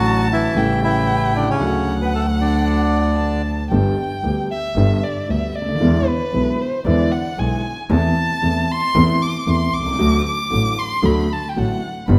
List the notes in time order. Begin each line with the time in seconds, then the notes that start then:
Already playing: A1 A2 D3 F#3 A3 F#4 A5
0.33 E3 E4
0.55 A1 A2 C#3 G3 A3 E4 G5
0.84 E3 E4
1.36 D3 D4
1.50 C#3 C#4
1.60 D2 F#3 A3 F#4 F#5
2.01 B3 B4
2.14 A3 A4
2.41 D3 D4
3.18 A5
3.71 G1 G2 D3 G3 B3 G4 G5
4.23 D2 D3 G3 B3 G4
4.51 E5
4.76 G1 G2 D3 G3 B3 G4
5.03 D5
5.28 D2 D3 G3 B3 G4 E5
5.55 D2 D5
5.61 C#2
5.68 D2
5.74 D#2
5.80 E2 D3 E3 G#3 B3 E4
6.08 B4
6.33 B1 B2 D3 G#3 B3 E4
6.61 C5
6.85 E2 D3 E3 G#3 B3 E4 D5
7.12 F#5
7.38 B1 B2 D3 G#3 B3 E4 G#5
7.90 E2 C3 E3 A3 E4 A5
8.43 E2 C3 E3 A3 E4
8.70 C6
8.95 E2 C3 E3 A3 E4
9.22 D6
9.47 E2 C3 E3 A3 E4 C6
9.73 C2 D6
9.80 B1
9.86 C2
9.92 C#2
9.98 D2 D3 F#3 A3 F#4
10.26 D6
10.50 A1 A2 D3 F#3 A3 F#4
10.78 C6
11.02 D2 D3 F#3 A3 F#4 B5
11.33 A5
11.49 G5
11.56 A1 A2 D3 F#3 A3 F#4 F#5
12.08 G1 G2 D3 G3 B3 G4 B5